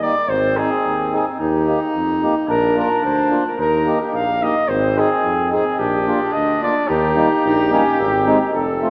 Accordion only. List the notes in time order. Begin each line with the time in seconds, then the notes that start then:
0.02 A#3 D#4 G4
0.56 C4 D#4 G#4
1.12 C4 D#4 G#4
1.66 A#3 D#4 G4
2.23 A#3 D#4 G4
2.76 A#3 D4 F4
3.30 A#3 D4 F4
3.85 A#3 D#4 G4
4.42 A#3 D#4 G4
4.95 C4 D#4 G#4
5.51 C4 D#4 G#4
6.07 A#3 D4 F4
6.61 A#3 D4 F4
7.15 G3 A#3 D#4
7.70 G3 A#3 D#4
8.26 G#3 C4 D#4
8.81 A3 C4 F4